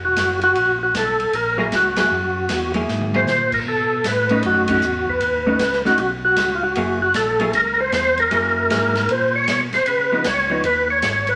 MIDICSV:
0, 0, Header, 1, 5, 480
1, 0, Start_track
1, 0, Tempo, 388350
1, 679, Time_signature, 4, 2, 24, 8
1, 14034, End_track
2, 0, Start_track
2, 0, Title_t, "Tonewheel organ"
2, 0, Program_c, 0, 16
2, 60, Note_on_c, 0, 66, 81
2, 492, Note_off_c, 0, 66, 0
2, 538, Note_on_c, 0, 66, 96
2, 971, Note_off_c, 0, 66, 0
2, 1026, Note_on_c, 0, 66, 73
2, 1167, Note_off_c, 0, 66, 0
2, 1194, Note_on_c, 0, 69, 81
2, 1671, Note_off_c, 0, 69, 0
2, 1671, Note_on_c, 0, 70, 81
2, 1945, Note_off_c, 0, 70, 0
2, 1982, Note_on_c, 0, 70, 83
2, 2051, Note_off_c, 0, 70, 0
2, 2165, Note_on_c, 0, 66, 77
2, 2433, Note_off_c, 0, 66, 0
2, 2472, Note_on_c, 0, 66, 73
2, 3362, Note_off_c, 0, 66, 0
2, 3903, Note_on_c, 0, 72, 81
2, 4335, Note_off_c, 0, 72, 0
2, 4375, Note_on_c, 0, 70, 80
2, 4447, Note_off_c, 0, 70, 0
2, 4551, Note_on_c, 0, 69, 75
2, 5030, Note_off_c, 0, 69, 0
2, 5038, Note_on_c, 0, 71, 78
2, 5467, Note_off_c, 0, 71, 0
2, 5514, Note_on_c, 0, 66, 75
2, 5803, Note_off_c, 0, 66, 0
2, 5817, Note_on_c, 0, 66, 81
2, 6296, Note_on_c, 0, 71, 91
2, 6298, Note_off_c, 0, 66, 0
2, 7194, Note_off_c, 0, 71, 0
2, 7249, Note_on_c, 0, 66, 78
2, 7398, Note_off_c, 0, 66, 0
2, 7413, Note_on_c, 0, 66, 80
2, 7549, Note_off_c, 0, 66, 0
2, 7722, Note_on_c, 0, 66, 84
2, 8089, Note_on_c, 0, 65, 60
2, 8095, Note_off_c, 0, 66, 0
2, 8196, Note_off_c, 0, 65, 0
2, 8199, Note_on_c, 0, 66, 89
2, 8641, Note_off_c, 0, 66, 0
2, 8680, Note_on_c, 0, 66, 83
2, 8833, Note_off_c, 0, 66, 0
2, 8850, Note_on_c, 0, 69, 83
2, 9291, Note_off_c, 0, 69, 0
2, 9335, Note_on_c, 0, 70, 84
2, 9646, Note_off_c, 0, 70, 0
2, 9646, Note_on_c, 0, 72, 91
2, 9796, Note_off_c, 0, 72, 0
2, 9818, Note_on_c, 0, 72, 90
2, 10127, Note_off_c, 0, 72, 0
2, 10134, Note_on_c, 0, 70, 109
2, 11260, Note_on_c, 0, 72, 97
2, 11283, Note_off_c, 0, 70, 0
2, 11537, Note_off_c, 0, 72, 0
2, 11563, Note_on_c, 0, 73, 96
2, 11714, Note_off_c, 0, 73, 0
2, 11737, Note_on_c, 0, 73, 88
2, 11872, Note_off_c, 0, 73, 0
2, 12040, Note_on_c, 0, 72, 85
2, 12192, Note_off_c, 0, 72, 0
2, 12206, Note_on_c, 0, 71, 84
2, 12690, Note_on_c, 0, 73, 91
2, 12695, Note_off_c, 0, 71, 0
2, 13130, Note_off_c, 0, 73, 0
2, 13164, Note_on_c, 0, 71, 85
2, 13448, Note_off_c, 0, 71, 0
2, 13477, Note_on_c, 0, 73, 91
2, 13951, Note_on_c, 0, 71, 88
2, 13965, Note_off_c, 0, 73, 0
2, 14026, Note_off_c, 0, 71, 0
2, 14034, End_track
3, 0, Start_track
3, 0, Title_t, "Hollow-body jazz guitar"
3, 0, Program_c, 1, 26
3, 1950, Note_on_c, 1, 54, 70
3, 1954, Note_on_c, 1, 58, 63
3, 1960, Note_on_c, 1, 64, 69
3, 1966, Note_on_c, 1, 68, 70
3, 2103, Note_off_c, 1, 54, 0
3, 2105, Note_off_c, 1, 58, 0
3, 2108, Note_off_c, 1, 64, 0
3, 2111, Note_off_c, 1, 68, 0
3, 2431, Note_on_c, 1, 54, 48
3, 2440, Note_on_c, 1, 58, 58
3, 2444, Note_on_c, 1, 64, 51
3, 2446, Note_on_c, 1, 68, 60
3, 2584, Note_off_c, 1, 54, 0
3, 2589, Note_off_c, 1, 58, 0
3, 2590, Note_off_c, 1, 64, 0
3, 2591, Note_off_c, 1, 68, 0
3, 3391, Note_on_c, 1, 54, 65
3, 3399, Note_on_c, 1, 58, 61
3, 3406, Note_on_c, 1, 64, 68
3, 3410, Note_on_c, 1, 68, 69
3, 3840, Note_off_c, 1, 54, 0
3, 3844, Note_off_c, 1, 58, 0
3, 3847, Note_off_c, 1, 64, 0
3, 3850, Note_off_c, 1, 68, 0
3, 3877, Note_on_c, 1, 54, 60
3, 3885, Note_on_c, 1, 58, 62
3, 3892, Note_on_c, 1, 64, 71
3, 3892, Note_on_c, 1, 68, 66
3, 4027, Note_off_c, 1, 54, 0
3, 4031, Note_off_c, 1, 58, 0
3, 4034, Note_off_c, 1, 64, 0
3, 4034, Note_off_c, 1, 68, 0
3, 5323, Note_on_c, 1, 57, 58
3, 5324, Note_on_c, 1, 61, 66
3, 5337, Note_on_c, 1, 63, 74
3, 5766, Note_off_c, 1, 57, 0
3, 5767, Note_off_c, 1, 61, 0
3, 5773, Note_off_c, 1, 63, 0
3, 5796, Note_on_c, 1, 57, 67
3, 5808, Note_on_c, 1, 61, 64
3, 5814, Note_on_c, 1, 63, 75
3, 5947, Note_off_c, 1, 57, 0
3, 5953, Note_off_c, 1, 61, 0
3, 5956, Note_off_c, 1, 63, 0
3, 6754, Note_on_c, 1, 57, 57
3, 6760, Note_on_c, 1, 61, 61
3, 6768, Note_on_c, 1, 63, 62
3, 6905, Note_off_c, 1, 57, 0
3, 6908, Note_off_c, 1, 61, 0
3, 6912, Note_off_c, 1, 63, 0
3, 7234, Note_on_c, 1, 57, 60
3, 7242, Note_on_c, 1, 61, 64
3, 7250, Note_on_c, 1, 63, 64
3, 7385, Note_off_c, 1, 57, 0
3, 7389, Note_off_c, 1, 61, 0
3, 7393, Note_off_c, 1, 63, 0
3, 8362, Note_on_c, 1, 54, 54
3, 8367, Note_on_c, 1, 58, 58
3, 8376, Note_on_c, 1, 64, 61
3, 8379, Note_on_c, 1, 68, 59
3, 8640, Note_off_c, 1, 54, 0
3, 8642, Note_off_c, 1, 58, 0
3, 8647, Note_off_c, 1, 64, 0
3, 8648, Note_off_c, 1, 68, 0
3, 9147, Note_on_c, 1, 54, 57
3, 9153, Note_on_c, 1, 58, 67
3, 9160, Note_on_c, 1, 64, 69
3, 9163, Note_on_c, 1, 68, 74
3, 9301, Note_off_c, 1, 54, 0
3, 9304, Note_off_c, 1, 58, 0
3, 9307, Note_off_c, 1, 64, 0
3, 9309, Note_off_c, 1, 68, 0
3, 10271, Note_on_c, 1, 54, 55
3, 10279, Note_on_c, 1, 58, 55
3, 10281, Note_on_c, 1, 64, 59
3, 10285, Note_on_c, 1, 68, 54
3, 10734, Note_off_c, 1, 54, 0
3, 10741, Note_off_c, 1, 58, 0
3, 10742, Note_off_c, 1, 64, 0
3, 10744, Note_off_c, 1, 68, 0
3, 10749, Note_on_c, 1, 54, 55
3, 10762, Note_on_c, 1, 64, 68
3, 10763, Note_on_c, 1, 58, 66
3, 10770, Note_on_c, 1, 68, 67
3, 11032, Note_off_c, 1, 54, 0
3, 11039, Note_off_c, 1, 58, 0
3, 11039, Note_off_c, 1, 64, 0
3, 11043, Note_off_c, 1, 68, 0
3, 12511, Note_on_c, 1, 53, 60
3, 12518, Note_on_c, 1, 59, 66
3, 12529, Note_on_c, 1, 63, 61
3, 12661, Note_off_c, 1, 53, 0
3, 12665, Note_off_c, 1, 59, 0
3, 12670, Note_off_c, 1, 63, 0
3, 12976, Note_on_c, 1, 53, 62
3, 12988, Note_on_c, 1, 59, 56
3, 12992, Note_on_c, 1, 63, 68
3, 13133, Note_off_c, 1, 53, 0
3, 13140, Note_off_c, 1, 59, 0
3, 13142, Note_off_c, 1, 63, 0
3, 14034, End_track
4, 0, Start_track
4, 0, Title_t, "Tonewheel organ"
4, 0, Program_c, 2, 16
4, 35, Note_on_c, 2, 28, 61
4, 186, Note_off_c, 2, 28, 0
4, 203, Note_on_c, 2, 30, 83
4, 667, Note_off_c, 2, 30, 0
4, 681, Note_on_c, 2, 34, 71
4, 1146, Note_off_c, 2, 34, 0
4, 1165, Note_on_c, 2, 35, 84
4, 1451, Note_off_c, 2, 35, 0
4, 1470, Note_on_c, 2, 35, 36
4, 1555, Note_off_c, 2, 35, 0
4, 1638, Note_on_c, 2, 34, 77
4, 2105, Note_off_c, 2, 34, 0
4, 2117, Note_on_c, 2, 37, 84
4, 2584, Note_off_c, 2, 37, 0
4, 2592, Note_on_c, 2, 42, 76
4, 3062, Note_off_c, 2, 42, 0
4, 3075, Note_on_c, 2, 40, 85
4, 3544, Note_off_c, 2, 40, 0
4, 3560, Note_on_c, 2, 44, 80
4, 4026, Note_off_c, 2, 44, 0
4, 4040, Note_on_c, 2, 46, 82
4, 4506, Note_off_c, 2, 46, 0
4, 4521, Note_on_c, 2, 47, 76
4, 4987, Note_off_c, 2, 47, 0
4, 5008, Note_on_c, 2, 45, 87
4, 5470, Note_off_c, 2, 45, 0
4, 5484, Note_on_c, 2, 42, 75
4, 5948, Note_off_c, 2, 42, 0
4, 5962, Note_on_c, 2, 40, 88
4, 6427, Note_off_c, 2, 40, 0
4, 6442, Note_on_c, 2, 39, 76
4, 6907, Note_off_c, 2, 39, 0
4, 6920, Note_on_c, 2, 37, 85
4, 7386, Note_off_c, 2, 37, 0
4, 7401, Note_on_c, 2, 35, 79
4, 7866, Note_off_c, 2, 35, 0
4, 7871, Note_on_c, 2, 37, 90
4, 8341, Note_off_c, 2, 37, 0
4, 8348, Note_on_c, 2, 30, 76
4, 8819, Note_off_c, 2, 30, 0
4, 8830, Note_on_c, 2, 34, 83
4, 9300, Note_off_c, 2, 34, 0
4, 9313, Note_on_c, 2, 37, 83
4, 9781, Note_off_c, 2, 37, 0
4, 9791, Note_on_c, 2, 40, 88
4, 10260, Note_off_c, 2, 40, 0
4, 10279, Note_on_c, 2, 42, 75
4, 10744, Note_off_c, 2, 42, 0
4, 10761, Note_on_c, 2, 44, 90
4, 11224, Note_off_c, 2, 44, 0
4, 11247, Note_on_c, 2, 46, 76
4, 11707, Note_off_c, 2, 46, 0
4, 11725, Note_on_c, 2, 47, 85
4, 12009, Note_off_c, 2, 47, 0
4, 12031, Note_on_c, 2, 47, 36
4, 12115, Note_off_c, 2, 47, 0
4, 12201, Note_on_c, 2, 49, 72
4, 12664, Note_off_c, 2, 49, 0
4, 12675, Note_on_c, 2, 37, 89
4, 13141, Note_off_c, 2, 37, 0
4, 13153, Note_on_c, 2, 39, 77
4, 13619, Note_off_c, 2, 39, 0
4, 13627, Note_on_c, 2, 32, 89
4, 14034, Note_off_c, 2, 32, 0
4, 14034, End_track
5, 0, Start_track
5, 0, Title_t, "Drums"
5, 203, Note_on_c, 9, 44, 50
5, 203, Note_on_c, 9, 51, 67
5, 209, Note_on_c, 9, 38, 63
5, 327, Note_off_c, 9, 44, 0
5, 327, Note_off_c, 9, 51, 0
5, 333, Note_off_c, 9, 38, 0
5, 512, Note_on_c, 9, 51, 41
5, 636, Note_off_c, 9, 51, 0
5, 684, Note_on_c, 9, 51, 50
5, 808, Note_off_c, 9, 51, 0
5, 1169, Note_on_c, 9, 44, 51
5, 1169, Note_on_c, 9, 51, 64
5, 1175, Note_on_c, 9, 38, 64
5, 1292, Note_off_c, 9, 44, 0
5, 1292, Note_off_c, 9, 51, 0
5, 1299, Note_off_c, 9, 38, 0
5, 1479, Note_on_c, 9, 51, 41
5, 1602, Note_off_c, 9, 51, 0
5, 1647, Note_on_c, 9, 51, 55
5, 1770, Note_off_c, 9, 51, 0
5, 2124, Note_on_c, 9, 44, 54
5, 2124, Note_on_c, 9, 51, 60
5, 2130, Note_on_c, 9, 38, 64
5, 2248, Note_off_c, 9, 44, 0
5, 2248, Note_off_c, 9, 51, 0
5, 2254, Note_off_c, 9, 38, 0
5, 2427, Note_on_c, 9, 51, 63
5, 2433, Note_on_c, 9, 38, 74
5, 2550, Note_off_c, 9, 51, 0
5, 2556, Note_off_c, 9, 38, 0
5, 3075, Note_on_c, 9, 44, 58
5, 3075, Note_on_c, 9, 51, 67
5, 3081, Note_on_c, 9, 38, 64
5, 3199, Note_off_c, 9, 44, 0
5, 3199, Note_off_c, 9, 51, 0
5, 3205, Note_off_c, 9, 38, 0
5, 3387, Note_on_c, 9, 51, 41
5, 3510, Note_off_c, 9, 51, 0
5, 3565, Note_on_c, 9, 38, 42
5, 3688, Note_off_c, 9, 38, 0
5, 3723, Note_on_c, 9, 48, 53
5, 3847, Note_off_c, 9, 48, 0
5, 3884, Note_on_c, 9, 48, 67
5, 4008, Note_off_c, 9, 48, 0
5, 4041, Note_on_c, 9, 44, 54
5, 4047, Note_on_c, 9, 38, 51
5, 4164, Note_off_c, 9, 44, 0
5, 4171, Note_off_c, 9, 38, 0
5, 4353, Note_on_c, 9, 36, 70
5, 4353, Note_on_c, 9, 49, 62
5, 4476, Note_off_c, 9, 49, 0
5, 4477, Note_off_c, 9, 36, 0
5, 4996, Note_on_c, 9, 44, 63
5, 4996, Note_on_c, 9, 51, 67
5, 5002, Note_on_c, 9, 38, 62
5, 5119, Note_off_c, 9, 44, 0
5, 5119, Note_off_c, 9, 51, 0
5, 5125, Note_off_c, 9, 38, 0
5, 5305, Note_on_c, 9, 51, 42
5, 5429, Note_off_c, 9, 51, 0
5, 5472, Note_on_c, 9, 51, 52
5, 5595, Note_off_c, 9, 51, 0
5, 5780, Note_on_c, 9, 51, 69
5, 5790, Note_on_c, 9, 36, 72
5, 5904, Note_off_c, 9, 51, 0
5, 5914, Note_off_c, 9, 36, 0
5, 5954, Note_on_c, 9, 44, 59
5, 6077, Note_off_c, 9, 44, 0
5, 6269, Note_on_c, 9, 36, 49
5, 6392, Note_off_c, 9, 36, 0
5, 6433, Note_on_c, 9, 51, 59
5, 6557, Note_off_c, 9, 51, 0
5, 6912, Note_on_c, 9, 44, 52
5, 6912, Note_on_c, 9, 51, 70
5, 6918, Note_on_c, 9, 38, 63
5, 7036, Note_off_c, 9, 44, 0
5, 7036, Note_off_c, 9, 51, 0
5, 7042, Note_off_c, 9, 38, 0
5, 7078, Note_on_c, 9, 38, 28
5, 7202, Note_off_c, 9, 38, 0
5, 7234, Note_on_c, 9, 38, 41
5, 7358, Note_off_c, 9, 38, 0
5, 7388, Note_on_c, 9, 51, 51
5, 7511, Note_off_c, 9, 51, 0
5, 7867, Note_on_c, 9, 44, 49
5, 7867, Note_on_c, 9, 51, 66
5, 7873, Note_on_c, 9, 38, 66
5, 7990, Note_off_c, 9, 44, 0
5, 7990, Note_off_c, 9, 51, 0
5, 7996, Note_off_c, 9, 38, 0
5, 8349, Note_on_c, 9, 51, 59
5, 8473, Note_off_c, 9, 51, 0
5, 8827, Note_on_c, 9, 44, 58
5, 8827, Note_on_c, 9, 51, 66
5, 8833, Note_on_c, 9, 38, 63
5, 8951, Note_off_c, 9, 44, 0
5, 8951, Note_off_c, 9, 51, 0
5, 8957, Note_off_c, 9, 38, 0
5, 9140, Note_on_c, 9, 51, 44
5, 9264, Note_off_c, 9, 51, 0
5, 9310, Note_on_c, 9, 51, 56
5, 9434, Note_off_c, 9, 51, 0
5, 9792, Note_on_c, 9, 44, 57
5, 9792, Note_on_c, 9, 51, 60
5, 9799, Note_on_c, 9, 38, 65
5, 9916, Note_off_c, 9, 44, 0
5, 9916, Note_off_c, 9, 51, 0
5, 9922, Note_off_c, 9, 38, 0
5, 10105, Note_on_c, 9, 51, 40
5, 10228, Note_off_c, 9, 51, 0
5, 10270, Note_on_c, 9, 51, 57
5, 10394, Note_off_c, 9, 51, 0
5, 10757, Note_on_c, 9, 44, 48
5, 10757, Note_on_c, 9, 51, 68
5, 10763, Note_on_c, 9, 38, 65
5, 10880, Note_off_c, 9, 44, 0
5, 10880, Note_off_c, 9, 51, 0
5, 10886, Note_off_c, 9, 38, 0
5, 11067, Note_on_c, 9, 51, 42
5, 11073, Note_on_c, 9, 38, 46
5, 11190, Note_off_c, 9, 51, 0
5, 11197, Note_off_c, 9, 38, 0
5, 11232, Note_on_c, 9, 51, 57
5, 11356, Note_off_c, 9, 51, 0
5, 11711, Note_on_c, 9, 44, 61
5, 11711, Note_on_c, 9, 51, 59
5, 11717, Note_on_c, 9, 38, 65
5, 11835, Note_off_c, 9, 44, 0
5, 11835, Note_off_c, 9, 51, 0
5, 11841, Note_off_c, 9, 38, 0
5, 12021, Note_on_c, 9, 51, 42
5, 12027, Note_on_c, 9, 38, 34
5, 12145, Note_off_c, 9, 51, 0
5, 12151, Note_off_c, 9, 38, 0
5, 12185, Note_on_c, 9, 51, 54
5, 12309, Note_off_c, 9, 51, 0
5, 12660, Note_on_c, 9, 44, 49
5, 12660, Note_on_c, 9, 51, 74
5, 12666, Note_on_c, 9, 38, 65
5, 12784, Note_off_c, 9, 44, 0
5, 12784, Note_off_c, 9, 51, 0
5, 12790, Note_off_c, 9, 38, 0
5, 13146, Note_on_c, 9, 51, 60
5, 13270, Note_off_c, 9, 51, 0
5, 13624, Note_on_c, 9, 44, 56
5, 13624, Note_on_c, 9, 51, 68
5, 13630, Note_on_c, 9, 38, 64
5, 13747, Note_off_c, 9, 44, 0
5, 13747, Note_off_c, 9, 51, 0
5, 13753, Note_off_c, 9, 38, 0
5, 13929, Note_on_c, 9, 51, 42
5, 14034, Note_off_c, 9, 51, 0
5, 14034, End_track
0, 0, End_of_file